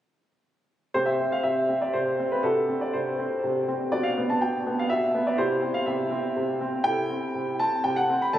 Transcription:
0.94 C3 C4 G4 C5
1.06 E5
1.20 C4
1.32 F5
1.43 C3 E5
1.69 C4
1.82 D5
1.93 C3 C5
2.20 C4
2.32 B4
2.43 C3 D4 F#4 A4
2.69 C4
2.81 D5
2.93 C3 C5
3.19 C4
3.43 C3
3.68 C4
3.92 B2 D4 G4 D5
4.03 F5
4.17 B3
4.30 A5
4.41 B2 G5
4.66 B3
4.79 F5
4.90 B2 E5
5.14 B3
5.27 D5
5.38 C3 E4 G4 C5
5.62 C4
5.74 F5
5.86 C3 E5
6.11 C4
6.36 C3
6.61 C4
6.84 C3 E4 A4 G5
7.10 C4
7.35 C3
7.60 C4 A5
7.84 C3 G5
7.96 F#5
8.10 C4
8.22 B5
8.33 D3 D4 A4 A5

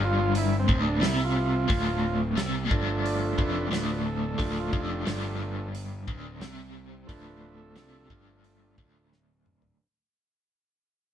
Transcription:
Already playing: G1 G2
0.04 F4
0.35 E4, open hi-hat
0.59 C4
0.68 D1 D2, kick
0.81 D4
1.01 C2 C3 E4, snare, open hi-hat
1.24 F4
1.68 D1 D2, kick, open hi-hat
2.36 C2 C3, snare, open hi-hat
2.69 G1 G2 F3 A3 D4, kick
3.03 D5, open hi-hat
3.37 F1 F2 B4, kick
3.70 D1 D2 F3 A3 D4, snare, open hi-hat
4.05 A4
4.37 D1 D2 F3 A3 D4 G4, kick, open hi-hat
4.60 F4
4.73 F1 F2, kick
4.84 G4
5.06 G1 G2, snare, open hi-hat
5.37 F3 A3 D4
5.75 open hi-hat
6.08 D1 D2, kick
6.40 C2 C3, snare, open hi-hat
7.07 D1 D2 F3 A3 D4 B4, kick, open hi-hat
7.56 A4
7.75 C2 C3, snare, open hi-hat
8.07 G1 G2 G4, kick
8.44 open hi-hat
8.78 D1 D2 F3 A3 D4, kick
9.12 snare
9.46 mid tom
9.62 floor tom

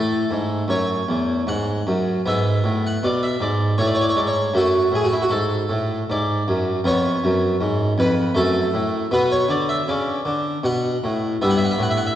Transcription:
Already playing: A2 A3 A4
0.31 G#2
0.68 F#2 C#5
1.08 E2
1.47 G#2 F#5
1.87 F#2
2.26 G#2 B3 E5
2.64 A2
2.87 F#5
3.03 B2 D5
3.23 E5
3.41 G#2 D5
3.78 A2 A3 C#5
3.87 D5
3.95 C#5
4.01 D5
4.09 C#5
4.16 G#2 D5
4.27 C#5
4.54 F#2 A3 F#4
4.92 A2 G#4
5.04 F#4
5.13 E4
5.22 F#4
5.30 G#2 A4
5.69 A2
6.10 G#2 D5
6.48 F#2
6.84 F2 B3 C#5
7.24 F#2
7.61 G#2
7.98 F2 B4
8.34 F#2 A3 A4
8.74 A2
9.11 B2 B3 B4
9.32 C#5
9.48 D3 D5
9.69 E5
9.88 C#3 D5
10.25 D3
10.63 B2 F#5
11.04 A2
11.42 G2 B3 E5
11.50 F#5
11.57 E5
11.64 F#5
11.71 E5
11.79 A2 F#5
11.90 E5
11.97 F#5
12.07 E5

